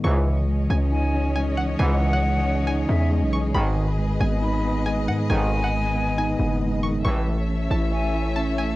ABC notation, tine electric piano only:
X:1
M:4/4
L:1/8
Q:1/4=137
K:C#m
V:1 name="Tine electric piano" clef=bass
C, E, G, C D C G, E, | C, E, G, C D C G, E, | G,, D, G, B, D B, G, D, | G,, D, G, B, D B, G, D, |
E, A, C E e E C A, |]